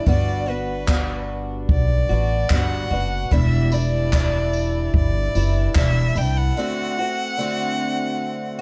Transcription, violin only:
0, 0, Header, 1, 2, 480
1, 0, Start_track
1, 0, Key_signature, 1, "major"
1, 0, Tempo, 811908
1, 41, Time_signature, 4, 2, 24, 8
1, 5093, End_track
2, 0, Start_track
2, 0, Title_t, "Violin"
2, 0, Program_c, 0, 40
2, 60, Note_on_c, 0, 74, 84
2, 293, Note_on_c, 0, 71, 69
2, 302, Note_off_c, 0, 74, 0
2, 767, Note_off_c, 0, 71, 0
2, 1009, Note_on_c, 0, 74, 85
2, 1494, Note_on_c, 0, 78, 91
2, 1503, Note_off_c, 0, 74, 0
2, 1969, Note_on_c, 0, 76, 90
2, 1978, Note_off_c, 0, 78, 0
2, 2205, Note_on_c, 0, 74, 91
2, 2214, Note_off_c, 0, 76, 0
2, 2923, Note_off_c, 0, 74, 0
2, 2930, Note_on_c, 0, 74, 96
2, 3382, Note_off_c, 0, 74, 0
2, 3408, Note_on_c, 0, 76, 90
2, 3650, Note_on_c, 0, 79, 98
2, 3659, Note_off_c, 0, 76, 0
2, 3768, Note_on_c, 0, 78, 109
2, 3777, Note_off_c, 0, 79, 0
2, 5093, Note_off_c, 0, 78, 0
2, 5093, End_track
0, 0, End_of_file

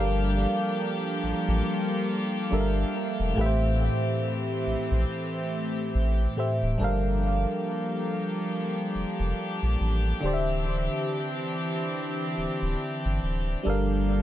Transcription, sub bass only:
0, 0, Header, 1, 2, 480
1, 0, Start_track
1, 0, Tempo, 857143
1, 1888, Time_signature, 4, 2, 24, 8
1, 7963, End_track
2, 0, Start_track
2, 0, Title_t, "Sub bass"
2, 0, Program_c, 0, 38
2, 0, Note_on_c, 0, 31, 104
2, 257, Note_off_c, 0, 31, 0
2, 690, Note_on_c, 0, 33, 51
2, 745, Note_off_c, 0, 33, 0
2, 828, Note_on_c, 0, 33, 93
2, 905, Note_off_c, 0, 33, 0
2, 1410, Note_on_c, 0, 31, 92
2, 1592, Note_off_c, 0, 31, 0
2, 1788, Note_on_c, 0, 28, 97
2, 1865, Note_off_c, 0, 28, 0
2, 1889, Note_on_c, 0, 33, 110
2, 2177, Note_off_c, 0, 33, 0
2, 2611, Note_on_c, 0, 34, 50
2, 2666, Note_off_c, 0, 34, 0
2, 2749, Note_on_c, 0, 34, 87
2, 2825, Note_off_c, 0, 34, 0
2, 3330, Note_on_c, 0, 33, 105
2, 3512, Note_off_c, 0, 33, 0
2, 3710, Note_on_c, 0, 26, 90
2, 3785, Note_off_c, 0, 26, 0
2, 3809, Note_on_c, 0, 31, 97
2, 4174, Note_off_c, 0, 31, 0
2, 5011, Note_on_c, 0, 29, 50
2, 5066, Note_off_c, 0, 29, 0
2, 5149, Note_on_c, 0, 29, 89
2, 5225, Note_off_c, 0, 29, 0
2, 5390, Note_on_c, 0, 34, 84
2, 5465, Note_off_c, 0, 34, 0
2, 5490, Note_on_c, 0, 33, 88
2, 5672, Note_off_c, 0, 33, 0
2, 5730, Note_on_c, 0, 26, 90
2, 6095, Note_off_c, 0, 26, 0
2, 6929, Note_on_c, 0, 26, 46
2, 6984, Note_off_c, 0, 26, 0
2, 7068, Note_on_c, 0, 26, 92
2, 7144, Note_off_c, 0, 26, 0
2, 7308, Note_on_c, 0, 31, 90
2, 7384, Note_off_c, 0, 31, 0
2, 7409, Note_on_c, 0, 26, 87
2, 7591, Note_off_c, 0, 26, 0
2, 7648, Note_on_c, 0, 31, 105
2, 7963, Note_off_c, 0, 31, 0
2, 7963, End_track
0, 0, End_of_file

